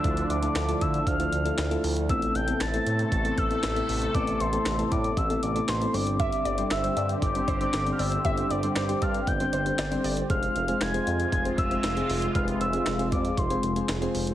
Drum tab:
HH |xxxxxxxxxxxxxxox|xxxxxxxxxxxxxxox|xxxxxxxxxxxxxxox|xxxxxxxxxxxxxxox|
CP |----x-------x---|----x-------x---|----x-------x---|----x-------x---|
SD |----o-------o---|----o-------o---|----o-------o---|----o-------o---|
BD |o-----o-o-------|o-------o-o-----|o-----o-o-------|o-------o-o-----|

HH |xxxxxxxxxxxxxxox|xxxxxxxxxxxxxxox|xxxxxxxxxxxxxxox|
CP |----x-------x---|----x-------x---|----x-------x---|
SD |----o-------o---|----o-------o---|----o-------o---|
BD |o-----o-o-------|o-------o-o-----|o-----o-o-------|